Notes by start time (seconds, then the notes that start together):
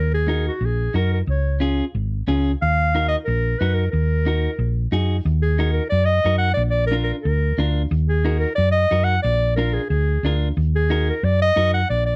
Already playing: D#2
0.00 A#4
0.14 G#4
0.28 D#4 F#4 A#4
0.48 F#4
0.61 A#1
0.65 G#4
0.94 F#2 D#4 F#4 A#4
1.14 A#4
1.27 C#2 C#5
1.60 C#4 F4 G#4
1.95 G#1
2.27 C#2 C#4 F4 G#4
2.62 D#2 F5
2.95 D#4 F#4 A#4
3.08 D#5
3.25 A#1 A#4
3.59 F#2 D#4 F#4 A#4 B4
3.74 A#4
3.91 D#2 A#4
4.26 D#4 F#4 A#4
4.59 A#1
4.92 F#2 D#4 F#4 G#4
5.25 D#2
5.42 G#4
5.59 D#4 F#4 A#4
5.73 A#4
5.89 F#2 D5
6.05 D#5
6.25 F#2 D#4 F#4 A#4
6.38 F#5
6.54 A#1 D5
6.70 D5
6.87 A#4
6.92 D4 F4 A#4
7.03 A#4
7.21 D2 A#4
7.58 D2 D4 F4 A#4
7.91 D#2
8.09 G#4
8.25 D#4 F#4 A#4
8.39 A#4
8.55 F#2 D5
8.72 D#5
8.91 F#2 D#4 F#4 A#4
9.04 F#5
9.22 A#1 D5
9.56 D4 F4 A#4
9.73 G#4
9.89 D2 G#4
10.23 D2 D4 F4 A#4
10.57 D#2
10.76 G#4
10.90 D#4 F#4 A#4
11.10 A#4
11.23 F#2 D5
11.42 D#5
11.56 F#2 D#4 F#4 A#4
11.74 F#5
11.90 A#1 D5
12.06 D5